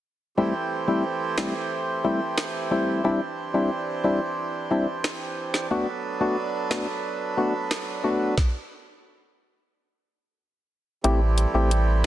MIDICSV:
0, 0, Header, 1, 5, 480
1, 0, Start_track
1, 0, Tempo, 666667
1, 271, Time_signature, 4, 2, 24, 8
1, 8683, End_track
2, 0, Start_track
2, 0, Title_t, "Harmonium"
2, 0, Program_c, 0, 20
2, 271, Note_on_c, 0, 52, 78
2, 271, Note_on_c, 0, 60, 70
2, 271, Note_on_c, 0, 67, 74
2, 272, Note_on_c, 0, 57, 73
2, 272, Note_on_c, 0, 72, 90
2, 2172, Note_off_c, 0, 57, 0
2, 2194, Note_on_c, 0, 62, 75
2, 4082, Note_off_c, 0, 52, 0
2, 4082, Note_off_c, 0, 60, 0
2, 4082, Note_off_c, 0, 67, 0
2, 4082, Note_off_c, 0, 72, 0
2, 4113, Note_on_c, 0, 69, 73
2, 4113, Note_on_c, 0, 71, 93
2, 4114, Note_on_c, 0, 54, 80
2, 4115, Note_on_c, 0, 59, 73
2, 6004, Note_off_c, 0, 62, 0
2, 6013, Note_off_c, 0, 54, 0
2, 6013, Note_off_c, 0, 69, 0
2, 6013, Note_off_c, 0, 71, 0
2, 6014, Note_off_c, 0, 59, 0
2, 7949, Note_on_c, 0, 55, 76
2, 7949, Note_on_c, 0, 57, 76
2, 7949, Note_on_c, 0, 60, 75
2, 7950, Note_on_c, 0, 52, 82
2, 7950, Note_on_c, 0, 67, 88
2, 8683, Note_off_c, 0, 52, 0
2, 8683, Note_off_c, 0, 55, 0
2, 8683, Note_off_c, 0, 57, 0
2, 8683, Note_off_c, 0, 60, 0
2, 8683, Note_off_c, 0, 67, 0
2, 8683, End_track
3, 0, Start_track
3, 0, Title_t, "Synth stab"
3, 0, Program_c, 1, 62
3, 270, Note_on_c, 1, 55, 91
3, 272, Note_on_c, 1, 57, 84
3, 273, Note_on_c, 1, 60, 82
3, 274, Note_on_c, 1, 64, 96
3, 385, Note_off_c, 1, 55, 0
3, 386, Note_off_c, 1, 57, 0
3, 387, Note_off_c, 1, 60, 0
3, 387, Note_off_c, 1, 64, 0
3, 632, Note_on_c, 1, 55, 74
3, 632, Note_on_c, 1, 57, 70
3, 634, Note_on_c, 1, 60, 67
3, 635, Note_on_c, 1, 64, 82
3, 746, Note_off_c, 1, 55, 0
3, 746, Note_off_c, 1, 57, 0
3, 747, Note_off_c, 1, 60, 0
3, 748, Note_off_c, 1, 64, 0
3, 991, Note_on_c, 1, 55, 76
3, 991, Note_on_c, 1, 57, 70
3, 993, Note_on_c, 1, 60, 68
3, 995, Note_on_c, 1, 64, 87
3, 1106, Note_off_c, 1, 55, 0
3, 1106, Note_off_c, 1, 57, 0
3, 1107, Note_off_c, 1, 60, 0
3, 1108, Note_off_c, 1, 64, 0
3, 1470, Note_on_c, 1, 55, 73
3, 1471, Note_on_c, 1, 57, 71
3, 1473, Note_on_c, 1, 60, 70
3, 1474, Note_on_c, 1, 64, 88
3, 1585, Note_off_c, 1, 55, 0
3, 1586, Note_off_c, 1, 57, 0
3, 1587, Note_off_c, 1, 60, 0
3, 1587, Note_off_c, 1, 64, 0
3, 1951, Note_on_c, 1, 55, 78
3, 1952, Note_on_c, 1, 57, 72
3, 1954, Note_on_c, 1, 60, 72
3, 1956, Note_on_c, 1, 64, 89
3, 2172, Note_off_c, 1, 55, 0
3, 2172, Note_off_c, 1, 57, 0
3, 2173, Note_off_c, 1, 60, 0
3, 2174, Note_off_c, 1, 64, 0
3, 2191, Note_on_c, 1, 55, 91
3, 2192, Note_on_c, 1, 60, 82
3, 2194, Note_on_c, 1, 62, 80
3, 2195, Note_on_c, 1, 64, 102
3, 2305, Note_off_c, 1, 55, 0
3, 2306, Note_off_c, 1, 60, 0
3, 2307, Note_off_c, 1, 62, 0
3, 2307, Note_off_c, 1, 64, 0
3, 2548, Note_on_c, 1, 55, 75
3, 2550, Note_on_c, 1, 60, 70
3, 2552, Note_on_c, 1, 62, 70
3, 2554, Note_on_c, 1, 64, 87
3, 2664, Note_off_c, 1, 55, 0
3, 2665, Note_off_c, 1, 60, 0
3, 2666, Note_off_c, 1, 62, 0
3, 2667, Note_off_c, 1, 64, 0
3, 2908, Note_on_c, 1, 55, 77
3, 2910, Note_on_c, 1, 60, 70
3, 2911, Note_on_c, 1, 62, 72
3, 2912, Note_on_c, 1, 64, 85
3, 3024, Note_off_c, 1, 55, 0
3, 3025, Note_off_c, 1, 60, 0
3, 3026, Note_off_c, 1, 62, 0
3, 3026, Note_off_c, 1, 64, 0
3, 3389, Note_on_c, 1, 55, 72
3, 3390, Note_on_c, 1, 60, 69
3, 3391, Note_on_c, 1, 62, 69
3, 3392, Note_on_c, 1, 64, 87
3, 3504, Note_off_c, 1, 55, 0
3, 3505, Note_off_c, 1, 60, 0
3, 3506, Note_off_c, 1, 62, 0
3, 3506, Note_off_c, 1, 64, 0
3, 4110, Note_on_c, 1, 57, 90
3, 4110, Note_on_c, 1, 59, 85
3, 4112, Note_on_c, 1, 62, 84
3, 4114, Note_on_c, 1, 66, 103
3, 4225, Note_off_c, 1, 57, 0
3, 4225, Note_off_c, 1, 59, 0
3, 4226, Note_off_c, 1, 62, 0
3, 4227, Note_off_c, 1, 66, 0
3, 4467, Note_on_c, 1, 57, 78
3, 4468, Note_on_c, 1, 59, 71
3, 4470, Note_on_c, 1, 62, 69
3, 4471, Note_on_c, 1, 66, 88
3, 4584, Note_off_c, 1, 57, 0
3, 4584, Note_off_c, 1, 59, 0
3, 4585, Note_off_c, 1, 62, 0
3, 4586, Note_off_c, 1, 66, 0
3, 4827, Note_on_c, 1, 57, 76
3, 4828, Note_on_c, 1, 59, 73
3, 4829, Note_on_c, 1, 62, 70
3, 4831, Note_on_c, 1, 66, 84
3, 4944, Note_off_c, 1, 57, 0
3, 4944, Note_off_c, 1, 59, 0
3, 4945, Note_off_c, 1, 62, 0
3, 4945, Note_off_c, 1, 66, 0
3, 5308, Note_on_c, 1, 57, 74
3, 5309, Note_on_c, 1, 59, 73
3, 5312, Note_on_c, 1, 62, 71
3, 5312, Note_on_c, 1, 66, 84
3, 5424, Note_off_c, 1, 57, 0
3, 5425, Note_off_c, 1, 59, 0
3, 5426, Note_off_c, 1, 62, 0
3, 5426, Note_off_c, 1, 66, 0
3, 5786, Note_on_c, 1, 57, 80
3, 5787, Note_on_c, 1, 59, 70
3, 5788, Note_on_c, 1, 62, 71
3, 5790, Note_on_c, 1, 66, 86
3, 6009, Note_off_c, 1, 57, 0
3, 6010, Note_off_c, 1, 59, 0
3, 6010, Note_off_c, 1, 62, 0
3, 6011, Note_off_c, 1, 66, 0
3, 7949, Note_on_c, 1, 57, 93
3, 7950, Note_on_c, 1, 60, 86
3, 7952, Note_on_c, 1, 64, 80
3, 7954, Note_on_c, 1, 67, 102
3, 8064, Note_off_c, 1, 57, 0
3, 8065, Note_off_c, 1, 60, 0
3, 8066, Note_off_c, 1, 64, 0
3, 8067, Note_off_c, 1, 67, 0
3, 8311, Note_on_c, 1, 57, 79
3, 8311, Note_on_c, 1, 60, 71
3, 8314, Note_on_c, 1, 64, 70
3, 8315, Note_on_c, 1, 67, 87
3, 8425, Note_off_c, 1, 57, 0
3, 8426, Note_off_c, 1, 60, 0
3, 8427, Note_off_c, 1, 64, 0
3, 8428, Note_off_c, 1, 67, 0
3, 8683, End_track
4, 0, Start_track
4, 0, Title_t, "Sub bass"
4, 0, Program_c, 2, 38
4, 7951, Note_on_c, 2, 33, 105
4, 8251, Note_off_c, 2, 33, 0
4, 8310, Note_on_c, 2, 33, 105
4, 8679, Note_off_c, 2, 33, 0
4, 8683, End_track
5, 0, Start_track
5, 0, Title_t, "Drums"
5, 991, Note_on_c, 9, 38, 103
5, 992, Note_on_c, 9, 26, 83
5, 1063, Note_off_c, 9, 38, 0
5, 1064, Note_off_c, 9, 26, 0
5, 1710, Note_on_c, 9, 38, 106
5, 1711, Note_on_c, 9, 26, 87
5, 1782, Note_off_c, 9, 38, 0
5, 1783, Note_off_c, 9, 26, 0
5, 3630, Note_on_c, 9, 38, 104
5, 3631, Note_on_c, 9, 26, 85
5, 3702, Note_off_c, 9, 38, 0
5, 3703, Note_off_c, 9, 26, 0
5, 3989, Note_on_c, 9, 38, 65
5, 4061, Note_off_c, 9, 38, 0
5, 4830, Note_on_c, 9, 38, 109
5, 4831, Note_on_c, 9, 26, 84
5, 4902, Note_off_c, 9, 38, 0
5, 4903, Note_off_c, 9, 26, 0
5, 5550, Note_on_c, 9, 38, 109
5, 5551, Note_on_c, 9, 26, 87
5, 5622, Note_off_c, 9, 38, 0
5, 5623, Note_off_c, 9, 26, 0
5, 6030, Note_on_c, 9, 36, 103
5, 6031, Note_on_c, 9, 38, 84
5, 6102, Note_off_c, 9, 36, 0
5, 6103, Note_off_c, 9, 38, 0
5, 7951, Note_on_c, 9, 42, 67
5, 8023, Note_off_c, 9, 42, 0
5, 8191, Note_on_c, 9, 42, 66
5, 8263, Note_off_c, 9, 42, 0
5, 8433, Note_on_c, 9, 42, 76
5, 8505, Note_off_c, 9, 42, 0
5, 8683, End_track
0, 0, End_of_file